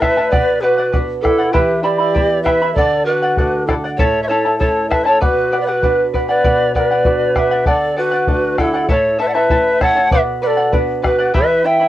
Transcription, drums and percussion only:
0.02 bombo rim soft
0.02 bombo low soft
0.33 bombo low medium
0.94 bombo low medium
1.25 bombo rim soft
1.25 bombo low soft
1.55 bombo low medium
2.16 bombo low medium
2.46 bombo rim soft
2.46 bombo low soft
2.77 bombo low medium
3.37 bombo low medium
3.69 bombo rim soft
3.69 bombo low soft
3.99 bombo low medium
4.61 bombo low medium
4.91 bombo rim soft
4.91 bombo low soft
5.22 bombo low medium
5.83 bombo low medium
6.14 bombo low soft
6.44 bombo low medium
6.75 bombo low soft
7.05 bombo low medium
7.36 bombo rim soft
7.36 bombo low soft
7.66 bombo low medium
8.27 bombo low medium
8.58 bombo rim soft
8.58 bombo low soft
8.89 bombo low medium
9.50 bombo low medium
9.81 bombo rim soft
9.81 bombo low medium
10.11 bombo low medium
10.73 bombo low medium
11.04 bombo rim soft
11.04 bombo low medium
11.34 bombo low medium

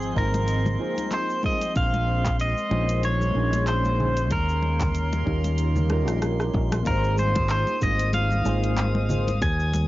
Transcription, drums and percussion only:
0.02 shaker soft
0.16 kick medium
0.34 closed hi-hat medium
0.34 muted conga medium
0.34 shaker medium
0.48 closed hi-hat soft
0.48 shaker medium
0.66 muted conga soft
0.66 high conga medium
0.66 low conga medium
0.66 shaker soft
0.98 closed hi-hat medium
0.98 high conga medium
0.98 shaker medium
1.11 clap medium
1.11 closed hi-hat soft
1.11 muted conga medium
1.11 shaker soft
1.30 shaker soft
1.43 kick medium
1.43 muted conga soft
1.43 high conga medium
1.61 closed hi-hat medium
1.61 shaker medium
1.76 kick loud
1.76 closed hi-hat soft
1.76 shaker soft
1.94 muted conga medium
1.94 shaker soft
2.25 kick medium
2.25 clap medium
2.25 closed hi-hat medium
2.25 muted conga medium
2.25 shaker medium
2.40 closed hi-hat soft
2.40 shaker medium
2.58 shaker soft
2.71 muted conga medium
2.89 closed hi-hat medium
2.89 shaker medium
3.03 closed hi-hat soft
3.03 muted conga medium
3.03 shaker medium
3.21 high conga medium
3.21 shaker soft
3.53 closed hi-hat medium
3.53 muted conga medium
3.53 high conga medium
3.53 shaker medium
3.67 clap medium
3.67 closed hi-hat soft
3.67 shaker medium
3.85 muted conga soft
3.85 shaker soft
4.00 high conga medium
4.00 low conga medium
4.17 closed hi-hat medium
4.17 shaker medium
4.31 kick loud
4.31 closed hi-hat soft
4.31 muted conga medium
4.31 shaker soft
4.49 shaker soft
4.62 muted conga medium
4.81 kick loud
4.81 clap medium
4.81 closed hi-hat medium
4.81 high conga soft
4.81 low conga medium
4.81 shaker medium
4.95 closed hi-hat soft
4.95 shaker medium
5.12 muted conga medium
5.12 shaker soft
5.27 kick medium
5.44 closed hi-hat medium
5.44 muted conga medium
5.44 shaker medium
5.58 closed hi-hat soft
5.58 shaker medium
5.76 high conga medium
5.76 low conga medium
5.76 shaker soft
5.90 cross-stick medium
5.90 muted conga medium
6.08 cross-stick medium
6.08 closed hi-hat medium
6.08 high conga medium
6.08 shaker medium
6.22 cross-stick medium
6.22 closed hi-hat soft
6.22 muted conga soft
6.22 shaker soft
6.40 cross-stick medium
6.40 shaker soft
6.54 kick loud
6.54 high conga medium
6.72 cross-stick medium
6.72 closed hi-hat medium
6.72 muted conga medium
6.72 shaker medium
6.85 kick loud
6.85 closed hi-hat soft
6.85 muted conga soft
6.85 shaker soft
7.04 shaker soft
7.18 high conga medium
7.18 shaker medium
7.35 kick loud
7.35 closed hi-hat medium
7.35 muted conga medium
7.35 shaker soft
7.49 clap loud
7.49 closed hi-hat soft
7.49 shaker soft
7.67 muted conga medium
7.67 shaker soft
7.82 kick medium
7.82 high conga medium
7.82 shaker medium
7.99 closed hi-hat medium
7.99 shaker soft
8.13 closed hi-hat soft
8.13 muted conga medium
8.13 shaker soft
8.31 high conga medium
8.31 shaker soft
8.45 muted conga medium
8.45 shaker medium
8.64 closed hi-hat medium
8.64 shaker soft
8.77 clap loud
8.77 closed hi-hat soft
8.77 high conga medium
8.77 shaker soft
8.95 muted conga medium
9.09 low conga medium
9.09 shaker medium
9.27 closed hi-hat medium
9.27 muted conga soft
9.27 high conga loud
9.27 shaker soft
9.42 kick loud
9.42 closed hi-hat soft
9.42 shaker soft
9.60 shaker soft
9.74 muted conga medium
9.74 high conga medium
9.74 shaker medium

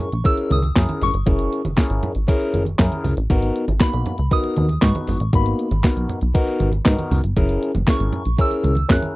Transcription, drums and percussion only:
0.00 closed hi-hat medium
0.12 closed hi-hat medium
0.25 kick loud
0.25 closed hi-hat medium
0.38 closed hi-hat medium
0.50 closed hi-hat medium
0.50 high conga medium
0.62 closed hi-hat soft
0.62 high conga medium
0.76 kick loud
0.76 snare loud
0.76 clap loud
0.76 closed hi-hat medium
0.89 closed hi-hat medium
0.89 muted conga soft
0.89 high conga medium
1.01 open hi-hat medium
1.01 high conga medium
1.01 low conga medium
1.14 closed hi-hat medium
1.26 kick loud
1.26 closed hi-hat medium
1.26 muted conga soft
1.26 low conga medium
1.39 closed hi-hat medium
1.39 muted conga soft
1.53 closed hi-hat medium
1.65 closed hi-hat medium
1.65 high conga medium
1.76 kick loud
1.76 snare loud
1.76 clap medium
1.76 closed hi-hat loud
1.76 muted conga soft
1.90 closed hi-hat medium
2.03 closed hi-hat medium
2.03 low conga medium
2.15 closed hi-hat medium
2.27 kick loud
2.27 closed hi-hat loud
2.27 muted conga soft
2.41 closed hi-hat medium
2.54 closed hi-hat medium
2.54 high conga medium
2.65 closed hi-hat soft
2.65 high conga medium
2.79 kick loud
2.79 snare loud
2.79 clap loud
2.79 closed hi-hat medium
2.92 closed hi-hat medium
2.92 high conga medium
3.04 open hi-hat medium
3.04 high conga medium
3.04 low conga medium
3.17 closed hi-hat medium
3.30 kick loud
3.30 closed hi-hat medium
3.30 muted conga soft
3.42 closed hi-hat medium
3.42 muted conga soft
3.56 closed hi-hat medium
3.68 closed hi-hat medium
3.68 high conga medium
3.80 kick loud
3.80 snare loud
3.80 clap medium
3.80 closed hi-hat loud
3.93 closed hi-hat medium
4.06 closed hi-hat medium
4.06 low conga medium
4.18 closed hi-hat medium
4.31 kick loud
4.31 closed hi-hat loud
4.44 closed hi-hat medium
4.44 muted conga soft
4.56 closed hi-hat medium
4.56 high conga medium
4.68 closed hi-hat soft
4.68 high conga medium
4.82 kick loud
4.82 snare loud
4.82 clap loud
4.82 closed hi-hat medium
4.82 muted conga soft
4.95 closed hi-hat medium
4.95 muted conga soft
4.95 high conga medium
5.07 open hi-hat medium
5.07 high conga medium
5.07 low conga medium
5.20 closed hi-hat medium
5.33 kick loud
5.33 closed hi-hat medium
5.46 closed hi-hat medium
5.46 muted conga soft
5.59 closed hi-hat medium
5.71 closed hi-hat medium
5.71 high conga medium
5.83 kick loud
5.83 snare loud
5.83 clap medium
5.83 closed hi-hat loud
5.83 muted conga soft
5.97 closed hi-hat medium
6.09 closed hi-hat medium
6.09 low conga medium
6.21 closed hi-hat medium
6.33 kick loud
6.33 closed hi-hat loud
6.33 muted conga soft
6.47 closed hi-hat medium
6.60 closed hi-hat medium
6.60 high conga medium
6.72 closed hi-hat soft
6.72 high conga medium
6.86 kick loud
6.86 snare loud
6.86 clap loud
6.86 closed hi-hat medium
6.99 closed hi-hat medium
6.99 muted conga soft
6.99 high conga medium
7.11 open hi-hat medium
7.11 high conga medium
7.11 low conga medium
7.24 closed hi-hat medium
7.36 kick loud
7.36 closed hi-hat medium
7.49 closed hi-hat medium
7.49 muted conga soft
7.63 closed hi-hat medium
7.75 closed hi-hat medium
7.75 high conga medium
7.87 kick loud
7.87 snare loud
7.87 clap medium
7.87 closed hi-hat loud
7.99 closed hi-hat medium
7.99 muted conga soft
8.12 closed hi-hat medium
8.12 low conga medium
8.25 closed hi-hat medium
8.37 kick loud
8.37 closed hi-hat loud
8.37 muted conga soft
8.51 closed hi-hat soft
8.51 muted conga soft
8.64 closed hi-hat medium
8.64 high conga medium
8.75 closed hi-hat soft
8.75 high conga medium
8.89 kick loud
8.89 snare loud
8.89 clap loud
8.89 closed hi-hat medium
8.89 muted conga soft
9.02 closed hi-hat medium
9.02 muted conga soft
9.02 high conga medium

